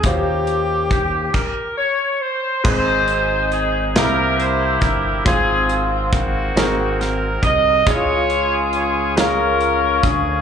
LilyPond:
<<
  \new Staff \with { instrumentName = "Horn section" } { \time 6/8 \key aes \major \tempo 4. = 46 << { r4 g'8 bes'8 des''8 c''8 | c''4 aes'8 bes'8 c''8 bes'8 | aes'8 r8 ges'4 bes'8 ees''8 | des''4 des''8 bes'4 aes'8 | } \\ { r2. | <ees' aes'>4. <e' g'>4. | <c' f'>4 <bes c'>4. r8 | <f' aes'>4. <des' f'>4. | } >> }
  \new Staff \with { instrumentName = "Alto saxophone" } { \time 6/8 \key aes \major g'2 r4 | r2. | r2. | r2. | }
  \new Staff \with { instrumentName = "Grand piano" } { \time 6/8 \key aes \major <des' ees' f' ges' g' c''>4 r2 | <aes c' ees' aes' c''>4 r8 <bes c' e' g' aes' bes'>4 r8 | <aes c' f' aes' c''>4 r8 <c' ees' ges' aes' bes'>4 r8 | <aes des' fes' f' aes' des''>4 r8 <aes des' f' aes' bes'>4 r8 | }
  \new Staff \with { instrumentName = "Grand piano" } { \clef bass \time 6/8 \key aes \major ees4. r4. | aes,4. c4. | aes,4. aes,4. | des4. r4. | }
  \new Staff \with { instrumentName = "Analog synth bass" } { \clef bass \time 6/8 \key aes \major ees,4. r4. | aes,,4. c,4 g,,8 | aes,,4. aes,,4 c,8 | des,2~ des,8 d,8 | }
  \new DrumStaff \with { instrumentName = "Drums" } \drummode { \time 6/8 <hh bd>8 hh8 <hh bd>8 <cymc bd>4. | <cymc bd>8 hh8 hh8 <hh sn>8 hh8 <hh bd>8 | <hh bd>8 hh8 <hh bd>8 <hh sn>8 <hh sn>8 <hh bd>8 | <hh bd>8 hh8 hh8 <hh sn>8 hh8 <hh bd>8 | }
>>